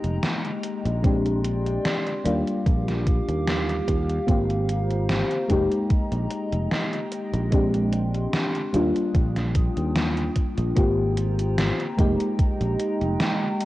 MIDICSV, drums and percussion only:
0, 0, Header, 1, 2, 480
1, 0, Start_track
1, 0, Key_signature, -3, "major"
1, 0, Tempo, 810811
1, 615, Time_signature, 4, 2, 24, 8
1, 8081, End_track
2, 0, Start_track
2, 0, Title_t, "Drums"
2, 23, Note_on_c, 9, 42, 36
2, 82, Note_off_c, 9, 42, 0
2, 136, Note_on_c, 9, 38, 109
2, 136, Note_on_c, 9, 42, 60
2, 195, Note_off_c, 9, 38, 0
2, 195, Note_off_c, 9, 42, 0
2, 265, Note_on_c, 9, 42, 35
2, 324, Note_off_c, 9, 42, 0
2, 375, Note_on_c, 9, 42, 86
2, 434, Note_off_c, 9, 42, 0
2, 505, Note_on_c, 9, 42, 37
2, 565, Note_off_c, 9, 42, 0
2, 616, Note_on_c, 9, 36, 107
2, 616, Note_on_c, 9, 42, 62
2, 675, Note_off_c, 9, 36, 0
2, 676, Note_off_c, 9, 42, 0
2, 744, Note_on_c, 9, 42, 40
2, 803, Note_off_c, 9, 42, 0
2, 855, Note_on_c, 9, 42, 85
2, 914, Note_off_c, 9, 42, 0
2, 985, Note_on_c, 9, 42, 36
2, 1044, Note_off_c, 9, 42, 0
2, 1096, Note_on_c, 9, 38, 102
2, 1096, Note_on_c, 9, 42, 59
2, 1155, Note_off_c, 9, 38, 0
2, 1155, Note_off_c, 9, 42, 0
2, 1224, Note_on_c, 9, 42, 36
2, 1283, Note_off_c, 9, 42, 0
2, 1336, Note_on_c, 9, 42, 83
2, 1395, Note_off_c, 9, 42, 0
2, 1465, Note_on_c, 9, 42, 37
2, 1524, Note_off_c, 9, 42, 0
2, 1576, Note_on_c, 9, 36, 118
2, 1577, Note_on_c, 9, 42, 59
2, 1635, Note_off_c, 9, 36, 0
2, 1636, Note_off_c, 9, 42, 0
2, 1706, Note_on_c, 9, 38, 35
2, 1706, Note_on_c, 9, 42, 34
2, 1765, Note_off_c, 9, 38, 0
2, 1765, Note_off_c, 9, 42, 0
2, 1816, Note_on_c, 9, 36, 98
2, 1816, Note_on_c, 9, 42, 81
2, 1875, Note_off_c, 9, 36, 0
2, 1875, Note_off_c, 9, 42, 0
2, 1945, Note_on_c, 9, 42, 38
2, 2005, Note_off_c, 9, 42, 0
2, 2057, Note_on_c, 9, 38, 109
2, 2057, Note_on_c, 9, 42, 61
2, 2116, Note_off_c, 9, 38, 0
2, 2116, Note_off_c, 9, 42, 0
2, 2186, Note_on_c, 9, 42, 35
2, 2245, Note_off_c, 9, 42, 0
2, 2296, Note_on_c, 9, 36, 58
2, 2297, Note_on_c, 9, 42, 87
2, 2355, Note_off_c, 9, 36, 0
2, 2357, Note_off_c, 9, 42, 0
2, 2425, Note_on_c, 9, 42, 38
2, 2484, Note_off_c, 9, 42, 0
2, 2536, Note_on_c, 9, 36, 112
2, 2537, Note_on_c, 9, 42, 65
2, 2595, Note_off_c, 9, 36, 0
2, 2596, Note_off_c, 9, 42, 0
2, 2665, Note_on_c, 9, 42, 41
2, 2724, Note_off_c, 9, 42, 0
2, 2777, Note_on_c, 9, 42, 84
2, 2836, Note_off_c, 9, 42, 0
2, 2905, Note_on_c, 9, 42, 37
2, 2964, Note_off_c, 9, 42, 0
2, 3016, Note_on_c, 9, 38, 107
2, 3016, Note_on_c, 9, 42, 58
2, 3075, Note_off_c, 9, 38, 0
2, 3075, Note_off_c, 9, 42, 0
2, 3144, Note_on_c, 9, 42, 36
2, 3203, Note_off_c, 9, 42, 0
2, 3255, Note_on_c, 9, 36, 57
2, 3255, Note_on_c, 9, 42, 86
2, 3314, Note_off_c, 9, 36, 0
2, 3314, Note_off_c, 9, 42, 0
2, 3383, Note_on_c, 9, 42, 36
2, 3443, Note_off_c, 9, 42, 0
2, 3494, Note_on_c, 9, 42, 58
2, 3495, Note_on_c, 9, 36, 112
2, 3553, Note_off_c, 9, 42, 0
2, 3554, Note_off_c, 9, 36, 0
2, 3623, Note_on_c, 9, 42, 38
2, 3682, Note_off_c, 9, 42, 0
2, 3733, Note_on_c, 9, 42, 86
2, 3793, Note_off_c, 9, 42, 0
2, 3863, Note_on_c, 9, 42, 38
2, 3922, Note_off_c, 9, 42, 0
2, 3974, Note_on_c, 9, 38, 105
2, 3974, Note_on_c, 9, 42, 64
2, 4034, Note_off_c, 9, 38, 0
2, 4034, Note_off_c, 9, 42, 0
2, 4103, Note_on_c, 9, 42, 37
2, 4162, Note_off_c, 9, 42, 0
2, 4214, Note_on_c, 9, 42, 94
2, 4273, Note_off_c, 9, 42, 0
2, 4343, Note_on_c, 9, 42, 37
2, 4402, Note_off_c, 9, 42, 0
2, 4453, Note_on_c, 9, 42, 66
2, 4454, Note_on_c, 9, 36, 112
2, 4512, Note_off_c, 9, 42, 0
2, 4514, Note_off_c, 9, 36, 0
2, 4582, Note_on_c, 9, 42, 40
2, 4641, Note_off_c, 9, 42, 0
2, 4693, Note_on_c, 9, 42, 92
2, 4752, Note_off_c, 9, 42, 0
2, 4822, Note_on_c, 9, 42, 38
2, 4881, Note_off_c, 9, 42, 0
2, 4933, Note_on_c, 9, 38, 112
2, 4933, Note_on_c, 9, 42, 61
2, 4992, Note_off_c, 9, 38, 0
2, 4992, Note_off_c, 9, 42, 0
2, 5061, Note_on_c, 9, 42, 38
2, 5121, Note_off_c, 9, 42, 0
2, 5173, Note_on_c, 9, 42, 93
2, 5232, Note_off_c, 9, 42, 0
2, 5303, Note_on_c, 9, 42, 41
2, 5362, Note_off_c, 9, 42, 0
2, 5414, Note_on_c, 9, 36, 113
2, 5414, Note_on_c, 9, 42, 63
2, 5474, Note_off_c, 9, 36, 0
2, 5474, Note_off_c, 9, 42, 0
2, 5542, Note_on_c, 9, 38, 34
2, 5542, Note_on_c, 9, 42, 40
2, 5602, Note_off_c, 9, 38, 0
2, 5602, Note_off_c, 9, 42, 0
2, 5653, Note_on_c, 9, 42, 86
2, 5654, Note_on_c, 9, 36, 94
2, 5712, Note_off_c, 9, 42, 0
2, 5714, Note_off_c, 9, 36, 0
2, 5783, Note_on_c, 9, 42, 38
2, 5842, Note_off_c, 9, 42, 0
2, 5894, Note_on_c, 9, 38, 111
2, 5894, Note_on_c, 9, 42, 64
2, 5954, Note_off_c, 9, 38, 0
2, 5954, Note_off_c, 9, 42, 0
2, 6022, Note_on_c, 9, 42, 38
2, 6081, Note_off_c, 9, 42, 0
2, 6132, Note_on_c, 9, 42, 100
2, 6135, Note_on_c, 9, 36, 62
2, 6192, Note_off_c, 9, 42, 0
2, 6194, Note_off_c, 9, 36, 0
2, 6262, Note_on_c, 9, 42, 40
2, 6321, Note_off_c, 9, 42, 0
2, 6374, Note_on_c, 9, 42, 84
2, 6375, Note_on_c, 9, 36, 118
2, 6433, Note_off_c, 9, 42, 0
2, 6434, Note_off_c, 9, 36, 0
2, 6614, Note_on_c, 9, 42, 80
2, 6673, Note_off_c, 9, 42, 0
2, 6743, Note_on_c, 9, 42, 57
2, 6802, Note_off_c, 9, 42, 0
2, 6856, Note_on_c, 9, 38, 112
2, 6856, Note_on_c, 9, 42, 80
2, 6915, Note_off_c, 9, 38, 0
2, 6915, Note_off_c, 9, 42, 0
2, 6984, Note_on_c, 9, 42, 36
2, 7043, Note_off_c, 9, 42, 0
2, 7095, Note_on_c, 9, 36, 102
2, 7096, Note_on_c, 9, 42, 81
2, 7154, Note_off_c, 9, 36, 0
2, 7155, Note_off_c, 9, 42, 0
2, 7223, Note_on_c, 9, 42, 53
2, 7283, Note_off_c, 9, 42, 0
2, 7335, Note_on_c, 9, 36, 113
2, 7335, Note_on_c, 9, 42, 80
2, 7394, Note_off_c, 9, 36, 0
2, 7394, Note_off_c, 9, 42, 0
2, 7464, Note_on_c, 9, 42, 37
2, 7523, Note_off_c, 9, 42, 0
2, 7575, Note_on_c, 9, 42, 78
2, 7634, Note_off_c, 9, 42, 0
2, 7703, Note_on_c, 9, 42, 53
2, 7763, Note_off_c, 9, 42, 0
2, 7815, Note_on_c, 9, 38, 115
2, 7815, Note_on_c, 9, 42, 79
2, 7874, Note_off_c, 9, 38, 0
2, 7874, Note_off_c, 9, 42, 0
2, 8054, Note_on_c, 9, 42, 82
2, 8081, Note_off_c, 9, 42, 0
2, 8081, End_track
0, 0, End_of_file